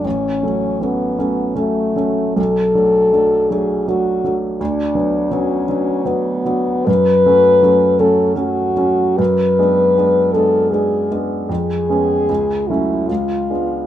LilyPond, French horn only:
\new Staff \with { instrumentName = "French horn" } { \time 3/4 \key fis \minor \tempo 4 = 78 cis'4 b4 a4 | a'4. gis'8 fis'8 r8 | d'4 cis'4 b4 | b'4. a'8 fis'4 |
b'4. a'8 gis'8 r8 | gis'4. e'8 eis'4 | }